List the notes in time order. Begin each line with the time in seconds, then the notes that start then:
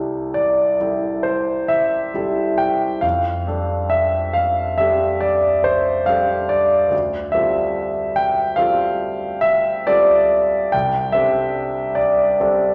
Already playing: C2 G3 E4 G4 A4
0.34 D5
0.81 G3 E4 G4 A4
1.23 C5
1.68 E5
2.14 G3 E4 G4 A4
2.58 G5
3.01 F2 F5
3.47 G3 D4 G4 A4
3.90 E5
4.33 F5
4.78 G3 D4 G4 A4 E5
5.20 D5
5.64 C5
6.06 G3 D4 G4 A4 F5
6.49 D5
6.90 D2
7.32 G3 C4 F4 A4 E5
8.16 G5
8.56 G3 C4 F4 A4 F5
9.41 E5
9.87 G3 C4 F4 A4 D5
10.72 C2 G5
11.12 G3 C4 D4 A4 E5
11.95 D5
12.40 G3 C4 D4 A4